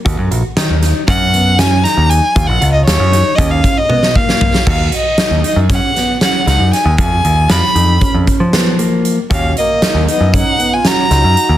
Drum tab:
CC |------------------|------------------|x-----------------|------------------|
HH |x-x-x-x-x-x-x-x-x-|x-x-x-x-x-x-------|--x-x-x-x-x-x-x-x-|x-x-x-x-x-x-x-x-x-|
SD |----o-o-----o-o---|----o-o------o-o-o|----o---o-o-o-o-o-|----o-------o-----|
T1 |------------------|------------o-----|------------------|------------------|
FT |------------------|----------------o-|------------------|------------------|
BD |o-------o---------|o-------o-o---o---|o-------o---------|o-------o-o-------|

CC |------------------|
HH |x-x-x-x-x-x-x-x-x-|
SD |----o-------o-o---|
T1 |------------------|
FT |------------------|
BD |o-------o---------|